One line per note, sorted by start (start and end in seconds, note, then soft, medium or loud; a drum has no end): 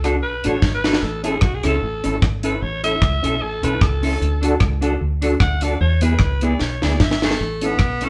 0.00 0.23 C#2 loud
0.00 0.16 D4 medium
0.00 0.16 D4 loud
0.04 0.16 F#4 medium
0.04 0.16 F#4 loud
0.04 0.16 A4 medium
0.04 0.16 A4 loud
0.04 cross-stick medium
0.04 closed hi-hat medium
0.22 0.42 B1 medium
0.22 0.49 B4 loud
0.44 0.60 A1 medium
0.44 0.56 D4 loud
0.44 0.56 D4 medium
0.44 0.56 F#4 medium
0.44 0.56 F#4 loud
0.44 0.56 A4 loud
0.44 closed hi-hat medium
0.48 0.74 C#5 loud
0.62 0.96 G#1 medium
0.62 muted clean electric guitar stroke soft
0.62 kick loud
0.62 snare medium
0.75 1.03 B4 loud
0.84 0.95 D4 medium
0.84 0.96 D4 medium
0.84 0.96 F#4 medium
0.84 0.96 A4 medium
0.84 0.96 A4 loud
0.84 snare medium
0.93 snare medium
1.02 1.36 A1 loud
1.02 1.23 A4 loud
1.23 1.35 C#4 loud
1.23 1.36 C#4 medium
1.23 1.36 E4 medium
1.23 1.43 G#4 loud
1.23 1.36 A4 loud
1.23 1.37 A4 medium
1.23 closed hi-hat medium
1.41 1.61 B1 medium
1.41 1.56 F#4 medium
1.41 kick loud
1.41 cross-stick loud
1.55 1.68 G#4 loud
1.63 1.80 C#2 loud
1.63 1.75 C#4 medium
1.63 1.75 C#4 loud
1.63 1.75 E4 medium
1.63 1.76 E4 loud
1.63 1.76 A4 loud
1.63 cross-stick medium
1.63 closed hi-hat medium
1.68 2.25 A4 loud
1.82 2.01 A1 medium
2.04 2.20 G#1 medium
2.04 2.15 C#4 loud
2.04 2.15 C#4 medium
2.04 2.15 E4 medium
2.04 2.16 A4 medium
2.04 2.16 A4 loud
2.04 closed hi-hat medium
2.22 2.56 G#1 medium
2.22 kick loud
2.22 cross-stick loud
2.43 2.55 C#4 loud
2.43 2.55 C#4 medium
2.43 2.55 E4 medium
2.43 2.55 A4 loud
2.43 2.56 A4 medium
2.43 2.64 B4 loud
2.43 closed hi-hat loud
2.62 2.96 A1 loud
2.62 2.83 C#5 loud
2.83 2.95 C#4 loud
2.83 2.95 C#4 medium
2.83 2.95 E4 medium
2.83 2.95 A4 loud
2.83 2.96 A4 medium
2.83 3.44 E5 loud
2.83 closed hi-hat medium
3.02 3.21 C#2 loud
3.02 kick loud
3.02 cross-stick loud
3.22 3.42 B1 loud
3.22 3.34 C#4 medium
3.22 3.35 C#4 medium
3.22 3.35 E4 medium
3.22 3.35 A4 loud
3.22 3.36 A4 medium
3.22 closed hi-hat medium
3.42 3.60 A1 loud
3.42 3.65 A4 loud
3.63 3.79 B1 loud
3.63 3.74 C#4 medium
3.63 3.75 C#4 loud
3.63 3.75 E4 medium
3.63 3.75 A4 loud
3.63 3.84 B4 loud
3.63 closed hi-hat medium
3.81 4.15 C#2 medium
3.81 4.83 A4 loud
3.81 kick loud
3.81 cross-stick loud
4.03 4.14 C#4 medium
4.03 4.14 E4 medium
4.03 4.15 E4 medium
4.03 4.15 A4 loud
4.03 open hi-hat medium
4.21 4.55 D2 loud
4.21 hi-hat pedal medium
4.42 4.54 D4 medium
4.42 4.54 F#4 medium
4.42 4.55 F#4 medium
4.42 4.54 A4 medium
4.42 4.55 A4 loud
4.42 closed hi-hat medium
4.60 4.95 C#2 loud
4.60 kick loud
4.60 cross-stick loud
4.81 4.93 D4 medium
4.81 4.94 D4 medium
4.81 4.94 F#4 loud
4.81 4.94 F#4 medium
4.81 4.94 A4 loud
4.81 closed hi-hat medium
5.01 5.35 D2 medium
5.22 5.33 D4 medium
5.22 5.34 D4 loud
5.22 5.34 F#4 medium
5.22 5.34 F#4 loud
5.22 5.34 A4 loud
5.22 5.35 A4 loud
5.22 closed hi-hat medium
5.40 5.75 D2 medium
5.40 5.65 F#5 loud
5.40 kick loud
5.40 cross-stick loud
5.61 5.74 D4 medium
5.61 5.74 D4 loud
5.61 5.74 F#4 medium
5.61 5.74 A4 loud
5.61 5.74 A4 medium
5.61 5.80 D5 loud
5.61 closed hi-hat medium
5.81 6.15 E2 loud
5.81 6.04 C#5 loud
6.01 6.13 B3 loud
6.01 6.13 B3 medium
6.01 6.14 E4 medium
6.01 6.14 G#4 medium
6.01 6.14 G#4 loud
6.01 6.45 B4 loud
6.01 closed hi-hat medium
6.19 6.54 C#2 medium
6.19 kick loud
6.19 cross-stick loud
6.41 6.54 B3 loud
6.41 6.54 B3 medium
6.41 6.54 E4 medium
6.41 6.54 G#4 medium
6.41 6.63 D5 loud
6.41 closed hi-hat medium
6.59 6.79 B1 loud
6.59 6.85 C#5 loud
6.59 snare medium
6.81 6.98 D2 medium
6.81 6.93 B3 medium
6.81 6.93 B3 loud
6.81 6.93 E4 medium
6.81 6.94 E4 medium
6.81 6.94 G#4 medium
6.81 6.94 G#4 loud
6.81 7.05 D5 loud
6.81 snare medium
7.00 7.34 G#1 loud
7.00 7.24 E5 medium
7.00 kick loud
7.00 snare medium
7.11 snare medium
7.22 7.66 A3 loud
7.22 7.34 B3 loud
7.22 7.33 B3 medium
7.22 7.34 E4 medium
7.22 7.34 G#4 loud
7.22 snare medium
7.31 snare medium
7.40 7.74 A1 loud
7.61 8.06 B3 loud
7.61 7.73 C#4 medium
7.61 7.73 C#4 loud
7.61 7.73 E4 medium
7.61 7.74 E4 medium
7.61 7.74 A4 medium
7.61 7.74 A4 loud
7.61 closed hi-hat medium
7.79 8.09 B1 medium
7.79 kick loud
7.79 cross-stick loud
8.01 8.09 C#4 medium
8.01 8.09 C#4 loud
8.01 8.09 E4 medium
8.01 8.09 E4 loud
8.01 8.09 A4 loud
8.01 8.09 A4 medium
8.01 closed hi-hat medium